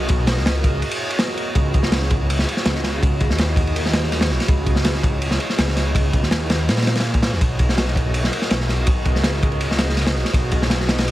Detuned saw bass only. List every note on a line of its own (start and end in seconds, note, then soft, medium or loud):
0.10 0.39 B1 loud
0.37 0.83 C#2 medium
1.55 2.46 C#2 loud
2.66 3.01 C#2 medium
3.03 3.31 C#2 loud
3.30 4.32 D#2 medium
4.30 4.39 B1 medium
4.48 5.39 C#2 loud
5.58 5.94 C#2 medium
5.95 6.24 C#2 loud
6.23 6.69 D#2 medium
6.68 7.34 A#2 medium
7.32 7.40 E2 medium
7.41 8.31 B1 loud
8.51 8.86 B1 medium
8.87 9.17 B1 loud
9.16 10.17 C#2 medium
10.16 10.24 B1 medium
10.34 11.11 B1 loud